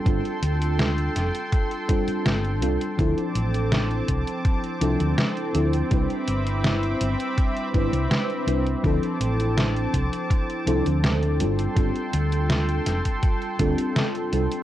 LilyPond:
<<
  \new Staff \with { instrumentName = "Analog synth pad" } { \time 4/4 \key d \dorian \tempo 4 = 82 << { <g'' c'''>1 | <a'' d'''>1 | <e'' b'' d'''>1 | <a'' d'''>2.~ <a'' d'''>8 <g'' c'''>8~ |
<g'' c'''>1 | } \\ { a'1 | c'1~ | c'1~ | c'2.~ c'8 a'8~ |
a'1 | } >> }
  \new Staff \with { instrumentName = "FM electric piano" } { \time 4/4 \key d \dorian <g c' d' f' a'>2~ <g c' d' f' a'>8 <g c' d' f' a'>4 <g c' d' f' a'>8 | <f c' d' e' a'>2~ <f c' d' e' a'>8 <f c' d' e' a'>4 <f c' d' e' a'>8 | <g c' d' e' b'>2~ <g c' d' e' b'>8 <g c' d' e' b'>4 <g c' d' e' b'>8 | <f c' d' e' a'>2~ <f c' d' e' a'>8 <f c' d' e' a'>4 <g c' d' f' a'>8 |
<g c' d' f' a'>2~ <g c' d' f' a'>8 <g c' d' f' a'>4 <g c' d' f' a'>8 | }
  \new Staff \with { instrumentName = "Fingered electric bass" } { \clef bass \time 4/4 \key d \dorian g,,16 r16 d,4 f,,16 r4 r16 g,,8 c,16 r16 | d,16 r16 a,,4 c,16 r8. c,16 d,16 r8 d,16 r16 | c,16 r16 g,,4 g,,16 r8. g,,16 c,16 r8 c,16 r16 | d,16 r16 a,,4 c,16 r8. c,16 d,8. g,,16 r16 |
g,,16 r16 d,4 f,,16 r8. d,16 r8. c,16 r16 | }
  \new DrumStaff \with { instrumentName = "Drums" } \drummode { \time 4/4 <hh bd>16 hh16 hh16 hh16 <hh sn>16 hh16 <hh sn>16 hh16 <hh bd>16 hh16 <hh bd>16 hh16 <hh sn>16 hh16 hh16 hh16 | <hh bd>16 hh16 hh16 hh16 <hh sn>16 hh16 <hh bd>16 hh16 <hh bd>16 hh16 hh16 hh16 <hh sn>16 hh16 hh16 hh16 | <hh bd>16 hh16 hh16 hh16 <hh sn>16 hh16 hh16 hh16 <hh bd>16 hh16 <hh bd>16 hh16 <hh sn>16 hh16 hh16 hh16 | <hh bd>16 hh16 hh16 hh16 <hh sn>16 hh16 <hh bd>16 hh16 <hh bd>16 hh16 hh16 hh16 <hh sn>16 hh16 hh16 hh16 |
<hh bd>16 hh16 hh16 hh16 <hh sn>16 hh16 <hh sn>16 <hh bd>16 <hh bd>16 hh16 <hh bd>16 hh16 <hh sn>16 hh16 hh16 hh16 | }
>>